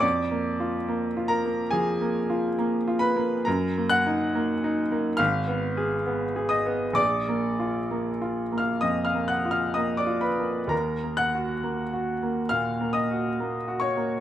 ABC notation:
X:1
M:4/4
L:1/16
Q:1/4=68
K:Ebm
V:1 name="Grand piano"
[=d=d']6 [Bb]2 [Aa]4 z2 [cc']2 | [Bb]2 [gg']6 [ff']6 [ee']2 | [=d=d']6- [dd'] [ff'] [ee'] [ff'] [gg'] [ff'] [ee'] [dd'] [cc']2 | [Bb]2 [gg']6 [ff']2 [ee']4 [dd']2 |]
V:2 name="Grand piano"
(3F,,2 B,2 F2 (3B,2 F2 B,2 (3F,2 B,2 F2 (3B,2 F2 B,2 | (3G,,2 B,2 E2 (3B,2 E2 B,2 (3A,,,2 C2 A2 (3C2 A2 C2 | (3B,,,2 B,2 F2 (3B,2 F2 B,2 (3F,,2 B,2 F2 (3B,2 F2 B,2 | (3E,,2 B,2 G2 (3B,2 G2 B,2 (3B,,2 B,2 G2 (3B,2 G2 B,2 |]